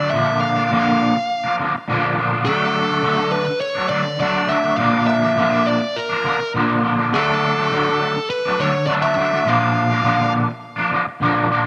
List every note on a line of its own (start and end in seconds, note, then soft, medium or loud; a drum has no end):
0.00 0.12 D3 medium
0.00 0.13 F#3 medium
0.00 0.13 A3 medium
0.00 0.15 D4 medium
0.00 0.10 D5 medium
0.10 0.70 A#2 medium
0.10 0.70 D3 medium
0.10 0.58 F3 medium
0.10 0.40 E5 medium
0.15 0.56 A#3 medium
0.15 0.56 D4 medium
0.41 1.54 F5 loud
0.56 0.71 F3 medium
0.56 0.72 A#3 medium
0.56 0.73 D4 medium
0.71 1.15 A#2 medium
0.71 1.15 D3 loud
0.71 0.86 F3 loud
0.71 0.85 A#3 loud
0.71 0.85 D4 loud
0.85 1.15 F3 medium
0.85 1.15 A#3 medium
0.85 1.15 D4 medium
1.15 muted clean electric guitar stroke soft
1.44 1.59 F3 medium
1.44 1.60 A#3 medium
1.44 1.62 D4 medium
1.59 1.73 D3 medium
1.59 1.74 F3 medium
1.59 1.74 A#3 medium
1.59 1.74 D4 medium
1.75 muted clean electric guitar stroke medium
1.88 2.45 A#2 medium
1.88 2.14 D3 loud
1.88 2.16 F3 loud
1.88 2.17 A#3 medium
1.88 2.19 D4 loud
2.16 2.44 D3 medium
2.16 2.32 F3 medium
2.16 2.31 A#3 medium
2.16 2.30 D4 medium
2.30 2.46 F3 medium
2.30 2.45 A#3 medium
2.30 2.48 D4 medium
2.45 3.01 D3 medium
2.45 2.91 F#3 loud
2.45 2.89 A3 loud
2.45 2.89 D4 loud
2.45 3.36 A4 medium
2.89 3.03 F#3 medium
2.89 3.03 A3 medium
2.89 3.05 D4 medium
3.02 3.47 D3 medium
3.02 3.18 F#3 medium
3.02 3.18 A3 loud
3.02 3.16 D4 medium
3.17 3.46 F#3 medium
3.17 3.46 A3 medium
3.17 3.46 D4 medium
3.32 3.60 B4 medium
3.46 muted clean electric guitar stroke soft
3.61 3.88 C#5 loud
3.75 3.89 F#3 medium
3.75 3.90 A3 medium
3.75 3.92 D4 medium
3.89 4.18 D3 medium
3.89 4.04 F#3 medium
3.89 4.04 A3 medium
3.89 4.04 D4 medium
3.89 4.19 D5 medium
4.05 muted clean electric guitar stroke medium
4.19 4.46 D3 medium
4.19 4.47 F#3 medium
4.19 4.47 A3 medium
4.19 4.49 D4 loud
4.19 4.51 D5 medium
4.47 4.76 D3 medium
4.47 4.64 F#3 medium
4.47 4.63 A3 medium
4.47 4.62 D4 medium
4.47 4.77 E5 medium
4.64 4.78 F#3 medium
4.64 4.77 A3 medium
4.77 5.35 A#2 medium
4.77 5.36 D3 medium
4.77 5.23 F3 medium
4.77 5.21 A#3 loud
4.77 5.21 D4 medium
4.77 5.06 F5 medium
5.07 5.68 E5 medium
5.22 5.37 F3 medium
5.22 5.37 A#3 medium
5.22 5.39 D4 medium
5.36 5.81 A#2 loud
5.36 5.80 D3 medium
5.36 5.52 F3 loud
5.36 5.50 A#3 loud
5.36 5.50 D4 loud
5.50 5.80 F3 medium
5.50 5.80 A#3 medium
5.50 5.80 D4 medium
5.66 5.97 D5 medium
5.81 muted clean electric guitar stroke medium
5.96 6.51 A#4 medium
6.09 6.24 F3 medium
6.09 6.25 A#3 medium
6.09 6.26 D4 medium
6.24 6.39 D3 medium
6.24 6.38 F3 medium
6.24 6.38 A#3 medium
6.24 6.39 D4 medium
6.39 muted clean electric guitar stroke soft
6.54 7.11 A#2 medium
6.54 6.81 D3 medium
6.54 6.81 F3 medium
6.54 6.83 A#3 medium
6.54 6.84 D4 medium
6.82 7.11 D3 medium
6.82 6.98 F3 medium
6.82 6.97 A#3 medium
6.82 6.96 D4 medium
6.97 7.12 F3 medium
6.97 7.11 A#3 medium
6.97 7.14 D4 medium
7.12 7.70 D3 medium
7.12 7.57 F#3 medium
7.12 7.56 A3 medium
7.12 7.55 D4 loud
7.12 8.30 A4 medium
7.55 7.71 F#3 medium
7.55 7.71 A3 medium
7.55 7.73 D4 medium
7.71 8.15 D3 medium
7.71 7.87 F#3 loud
7.71 7.86 A3 loud
7.71 7.85 D4 medium
7.86 8.16 F#3 medium
7.86 8.15 A3 medium
7.86 8.15 D4 medium
8.16 muted clean electric guitar stroke soft
8.30 8.60 B4 medium
8.45 8.59 F#3 medium
8.45 8.60 A3 medium
8.45 8.62 D4 medium
8.59 8.86 D3 medium
8.59 8.74 F#3 medium
8.59 8.74 A3 medium
8.59 8.74 D4 medium
8.59 8.86 C#5 medium
8.74 muted clean electric guitar stroke soft
8.86 9.15 D3 medium
8.86 9.16 F#3 loud
8.86 9.17 A3 medium
8.86 9.18 D4 loud
8.86 8.91 D5 medium
9.02 9.47 E5 loud
9.16 9.44 D3 medium
9.16 9.32 F#3 medium
9.16 9.32 A3 medium
9.16 9.31 D4 medium
9.31 9.45 F#3 medium
9.31 9.45 A3 medium
9.31 9.47 D4 medium
9.45 10.01 A#2 medium
9.45 10.02 D3 medium
9.45 9.91 F3 loud
9.45 9.90 A#3 medium
9.45 9.89 D4 loud
9.45 10.31 F5 loud
9.90 10.03 F3 medium
9.90 10.04 A#3 medium
9.90 10.05 D4 medium
10.02 10.47 A#2 medium
10.02 10.48 D3 loud
10.02 10.19 F3 loud
10.02 10.18 A#3 loud
10.02 10.17 D4 medium
10.18 10.48 F3 medium
10.18 10.47 A#3 medium
10.18 10.48 D4 medium
10.48 muted clean electric guitar stroke medium
10.76 10.91 F3 medium
10.76 10.92 A#3 medium
10.76 10.94 D4 medium
10.91 11.05 D3 medium
10.91 11.05 F3 medium
10.91 11.05 A#3 medium
10.91 11.05 D4 medium
11.05 muted clean electric guitar stroke soft
11.20 11.67 A#2 medium
11.20 11.48 D3 medium
11.20 11.49 F3 medium
11.20 11.50 A#3 loud
11.20 11.51 D4 loud
11.49 11.67 D3 medium
11.49 11.67 F3 medium
11.49 11.66 A#3 medium
11.49 11.65 D4 medium